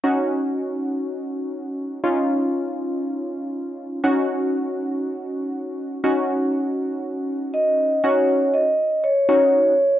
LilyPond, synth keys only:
\new Staff \with { instrumentName = "Synth keys" } { \time 4/4 \key ees \minor \tempo 4 = 120 <des' ees' ges'>1 | <des' ees' f'>1 | <des' ees' ges'>1 | <des' ees' ges'>1 |
<des' ees' ges'>4 r4. <des' ees' ges'>4 r8 | }